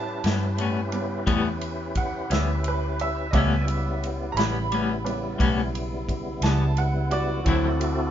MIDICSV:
0, 0, Header, 1, 6, 480
1, 0, Start_track
1, 0, Tempo, 688073
1, 2321, Time_signature, 12, 3, 24, 8
1, 5656, End_track
2, 0, Start_track
2, 0, Title_t, "Tonewheel organ"
2, 0, Program_c, 0, 16
2, 0, Note_on_c, 0, 61, 65
2, 0, Note_on_c, 0, 64, 65
2, 0, Note_on_c, 0, 67, 63
2, 0, Note_on_c, 0, 71, 66
2, 2286, Note_off_c, 0, 67, 0
2, 2287, Note_off_c, 0, 64, 0
2, 2290, Note_off_c, 0, 61, 0
2, 2291, Note_off_c, 0, 71, 0
2, 2324, Note_on_c, 0, 80, 65
2, 2325, Note_on_c, 0, 65, 58
2, 2329, Note_on_c, 0, 74, 64
2, 2331, Note_on_c, 0, 59, 65
2, 2542, Note_off_c, 0, 59, 0
2, 2548, Note_on_c, 0, 64, 66
2, 2550, Note_on_c, 0, 59, 62
2, 2552, Note_on_c, 0, 55, 64
2, 2555, Note_on_c, 0, 49, 68
2, 2563, Note_off_c, 0, 65, 0
2, 2563, Note_off_c, 0, 80, 0
2, 2565, Note_off_c, 0, 74, 0
2, 5167, Note_off_c, 0, 64, 0
2, 5168, Note_off_c, 0, 59, 0
2, 5169, Note_off_c, 0, 55, 0
2, 5171, Note_off_c, 0, 49, 0
2, 5211, Note_on_c, 0, 60, 70
2, 5211, Note_on_c, 0, 64, 69
2, 5212, Note_on_c, 0, 66, 70
2, 5213, Note_on_c, 0, 69, 69
2, 5656, Note_off_c, 0, 60, 0
2, 5656, Note_off_c, 0, 64, 0
2, 5656, Note_off_c, 0, 66, 0
2, 5656, Note_off_c, 0, 69, 0
2, 5656, End_track
3, 0, Start_track
3, 0, Title_t, "Upright piano"
3, 0, Program_c, 1, 0
3, 0, Note_on_c, 1, 49, 45
3, 0, Note_on_c, 1, 55, 39
3, 0, Note_on_c, 1, 59, 46
3, 0, Note_on_c, 1, 81, 66
3, 128, Note_off_c, 1, 49, 0
3, 129, Note_off_c, 1, 55, 0
3, 134, Note_off_c, 1, 59, 0
3, 644, Note_on_c, 1, 49, 35
3, 644, Note_on_c, 1, 55, 32
3, 651, Note_on_c, 1, 59, 41
3, 859, Note_off_c, 1, 49, 0
3, 859, Note_off_c, 1, 55, 0
3, 863, Note_off_c, 1, 59, 0
3, 1341, Note_off_c, 1, 81, 0
3, 1377, Note_on_c, 1, 78, 70
3, 1602, Note_off_c, 1, 78, 0
3, 1618, Note_on_c, 1, 76, 66
3, 1843, Note_off_c, 1, 76, 0
3, 1869, Note_on_c, 1, 71, 65
3, 2088, Note_off_c, 1, 71, 0
3, 2102, Note_on_c, 1, 76, 75
3, 2308, Note_on_c, 1, 75, 55
3, 2317, Note_on_c, 1, 49, 43
3, 2321, Note_on_c, 1, 55, 38
3, 2322, Note_off_c, 1, 76, 0
3, 2327, Note_on_c, 1, 59, 44
3, 2333, Note_off_c, 1, 75, 0
3, 2333, Note_on_c, 1, 76, 72
3, 2792, Note_off_c, 1, 76, 0
3, 3011, Note_off_c, 1, 49, 0
3, 3013, Note_off_c, 1, 55, 0
3, 3015, Note_on_c, 1, 82, 62
3, 3016, Note_off_c, 1, 59, 0
3, 3043, Note_off_c, 1, 82, 0
3, 3049, Note_on_c, 1, 83, 93
3, 3519, Note_on_c, 1, 49, 37
3, 3520, Note_on_c, 1, 55, 34
3, 3524, Note_on_c, 1, 59, 43
3, 3735, Note_off_c, 1, 49, 0
3, 3736, Note_off_c, 1, 55, 0
3, 3739, Note_off_c, 1, 59, 0
3, 4456, Note_off_c, 1, 83, 0
3, 4487, Note_on_c, 1, 81, 65
3, 4717, Note_off_c, 1, 81, 0
3, 4731, Note_on_c, 1, 78, 72
3, 4959, Note_off_c, 1, 78, 0
3, 4959, Note_on_c, 1, 66, 70
3, 4968, Note_on_c, 1, 74, 82
3, 5190, Note_on_c, 1, 52, 45
3, 5193, Note_on_c, 1, 54, 38
3, 5199, Note_on_c, 1, 60, 46
3, 5514, Note_off_c, 1, 52, 0
3, 5516, Note_off_c, 1, 54, 0
3, 5519, Note_off_c, 1, 60, 0
3, 5656, Note_off_c, 1, 66, 0
3, 5656, Note_off_c, 1, 74, 0
3, 5656, End_track
4, 0, Start_track
4, 0, Title_t, "Clean electric guitar"
4, 0, Program_c, 2, 27
4, 170, Note_on_c, 2, 61, 51
4, 176, Note_on_c, 2, 59, 44
4, 187, Note_on_c, 2, 55, 39
4, 311, Note_off_c, 2, 61, 0
4, 314, Note_off_c, 2, 59, 0
4, 319, Note_off_c, 2, 55, 0
4, 402, Note_on_c, 2, 45, 54
4, 411, Note_on_c, 2, 55, 53
4, 420, Note_on_c, 2, 59, 54
4, 426, Note_on_c, 2, 61, 63
4, 546, Note_off_c, 2, 45, 0
4, 551, Note_off_c, 2, 55, 0
4, 555, Note_off_c, 2, 59, 0
4, 559, Note_off_c, 2, 61, 0
4, 883, Note_on_c, 2, 45, 80
4, 885, Note_on_c, 2, 55, 89
4, 890, Note_on_c, 2, 59, 98
4, 896, Note_on_c, 2, 61, 82
4, 1026, Note_off_c, 2, 45, 0
4, 1028, Note_off_c, 2, 55, 0
4, 1030, Note_off_c, 2, 59, 0
4, 1033, Note_off_c, 2, 61, 0
4, 1605, Note_on_c, 2, 61, 46
4, 1616, Note_on_c, 2, 59, 42
4, 1631, Note_on_c, 2, 55, 39
4, 1747, Note_off_c, 2, 61, 0
4, 1753, Note_off_c, 2, 59, 0
4, 1760, Note_off_c, 2, 55, 0
4, 2330, Note_on_c, 2, 45, 71
4, 2340, Note_on_c, 2, 55, 74
4, 2342, Note_on_c, 2, 59, 70
4, 2353, Note_on_c, 2, 61, 88
4, 2469, Note_off_c, 2, 45, 0
4, 2474, Note_off_c, 2, 55, 0
4, 2476, Note_off_c, 2, 59, 0
4, 2481, Note_off_c, 2, 61, 0
4, 3053, Note_on_c, 2, 61, 51
4, 3065, Note_on_c, 2, 59, 46
4, 3069, Note_on_c, 2, 55, 42
4, 3191, Note_off_c, 2, 61, 0
4, 3197, Note_off_c, 2, 59, 0
4, 3199, Note_off_c, 2, 55, 0
4, 3292, Note_on_c, 2, 55, 59
4, 3294, Note_on_c, 2, 45, 57
4, 3308, Note_on_c, 2, 59, 60
4, 3308, Note_on_c, 2, 61, 69
4, 3430, Note_off_c, 2, 55, 0
4, 3431, Note_off_c, 2, 45, 0
4, 3438, Note_off_c, 2, 59, 0
4, 3438, Note_off_c, 2, 61, 0
4, 3756, Note_on_c, 2, 45, 86
4, 3759, Note_on_c, 2, 55, 81
4, 3769, Note_on_c, 2, 59, 90
4, 3773, Note_on_c, 2, 61, 95
4, 3902, Note_off_c, 2, 45, 0
4, 3904, Note_off_c, 2, 55, 0
4, 3908, Note_off_c, 2, 59, 0
4, 3911, Note_off_c, 2, 61, 0
4, 4486, Note_on_c, 2, 61, 50
4, 4502, Note_on_c, 2, 59, 44
4, 4508, Note_on_c, 2, 55, 43
4, 4627, Note_off_c, 2, 61, 0
4, 4635, Note_off_c, 2, 59, 0
4, 4638, Note_off_c, 2, 55, 0
4, 5205, Note_on_c, 2, 50, 66
4, 5208, Note_on_c, 2, 54, 76
4, 5214, Note_on_c, 2, 60, 75
4, 5220, Note_on_c, 2, 64, 91
4, 5347, Note_off_c, 2, 50, 0
4, 5348, Note_off_c, 2, 54, 0
4, 5351, Note_off_c, 2, 60, 0
4, 5354, Note_off_c, 2, 64, 0
4, 5656, End_track
5, 0, Start_track
5, 0, Title_t, "Fingered electric bass"
5, 0, Program_c, 3, 33
5, 0, Note_on_c, 3, 45, 75
5, 143, Note_off_c, 3, 45, 0
5, 168, Note_on_c, 3, 43, 88
5, 863, Note_off_c, 3, 43, 0
5, 886, Note_on_c, 3, 40, 71
5, 1582, Note_off_c, 3, 40, 0
5, 1606, Note_on_c, 3, 38, 83
5, 2302, Note_off_c, 3, 38, 0
5, 2321, Note_on_c, 3, 37, 83
5, 3019, Note_off_c, 3, 37, 0
5, 3031, Note_on_c, 3, 33, 86
5, 3734, Note_off_c, 3, 33, 0
5, 3769, Note_on_c, 3, 35, 79
5, 4463, Note_off_c, 3, 35, 0
5, 4474, Note_on_c, 3, 37, 87
5, 5175, Note_off_c, 3, 37, 0
5, 5208, Note_on_c, 3, 38, 83
5, 5656, Note_off_c, 3, 38, 0
5, 5656, End_track
6, 0, Start_track
6, 0, Title_t, "Drums"
6, 167, Note_on_c, 9, 51, 76
6, 183, Note_on_c, 9, 38, 98
6, 236, Note_off_c, 9, 51, 0
6, 252, Note_off_c, 9, 38, 0
6, 407, Note_on_c, 9, 51, 62
6, 477, Note_off_c, 9, 51, 0
6, 642, Note_on_c, 9, 51, 55
6, 712, Note_off_c, 9, 51, 0
6, 886, Note_on_c, 9, 36, 106
6, 888, Note_on_c, 9, 51, 73
6, 956, Note_off_c, 9, 36, 0
6, 958, Note_off_c, 9, 51, 0
6, 1126, Note_on_c, 9, 51, 64
6, 1196, Note_off_c, 9, 51, 0
6, 1363, Note_on_c, 9, 51, 59
6, 1365, Note_on_c, 9, 36, 74
6, 1432, Note_off_c, 9, 51, 0
6, 1435, Note_off_c, 9, 36, 0
6, 1610, Note_on_c, 9, 51, 82
6, 1626, Note_on_c, 9, 38, 94
6, 1679, Note_off_c, 9, 51, 0
6, 1696, Note_off_c, 9, 38, 0
6, 1842, Note_on_c, 9, 51, 62
6, 1912, Note_off_c, 9, 51, 0
6, 2089, Note_on_c, 9, 51, 52
6, 2159, Note_off_c, 9, 51, 0
6, 2325, Note_on_c, 9, 36, 99
6, 2326, Note_on_c, 9, 51, 77
6, 2395, Note_off_c, 9, 36, 0
6, 2396, Note_off_c, 9, 51, 0
6, 2567, Note_on_c, 9, 51, 62
6, 2637, Note_off_c, 9, 51, 0
6, 2815, Note_on_c, 9, 51, 58
6, 2885, Note_off_c, 9, 51, 0
6, 3048, Note_on_c, 9, 51, 75
6, 3064, Note_on_c, 9, 38, 101
6, 3118, Note_off_c, 9, 51, 0
6, 3134, Note_off_c, 9, 38, 0
6, 3291, Note_on_c, 9, 51, 58
6, 3361, Note_off_c, 9, 51, 0
6, 3532, Note_on_c, 9, 51, 56
6, 3602, Note_off_c, 9, 51, 0
6, 3767, Note_on_c, 9, 36, 106
6, 3771, Note_on_c, 9, 51, 76
6, 3837, Note_off_c, 9, 36, 0
6, 3841, Note_off_c, 9, 51, 0
6, 4012, Note_on_c, 9, 51, 58
6, 4081, Note_off_c, 9, 51, 0
6, 4245, Note_on_c, 9, 36, 68
6, 4248, Note_on_c, 9, 51, 56
6, 4315, Note_off_c, 9, 36, 0
6, 4318, Note_off_c, 9, 51, 0
6, 4479, Note_on_c, 9, 51, 75
6, 4495, Note_on_c, 9, 38, 102
6, 4548, Note_off_c, 9, 51, 0
6, 4564, Note_off_c, 9, 38, 0
6, 4721, Note_on_c, 9, 51, 56
6, 4791, Note_off_c, 9, 51, 0
6, 4961, Note_on_c, 9, 51, 58
6, 5031, Note_off_c, 9, 51, 0
6, 5203, Note_on_c, 9, 51, 78
6, 5204, Note_on_c, 9, 36, 102
6, 5273, Note_off_c, 9, 51, 0
6, 5274, Note_off_c, 9, 36, 0
6, 5447, Note_on_c, 9, 51, 68
6, 5517, Note_off_c, 9, 51, 0
6, 5656, End_track
0, 0, End_of_file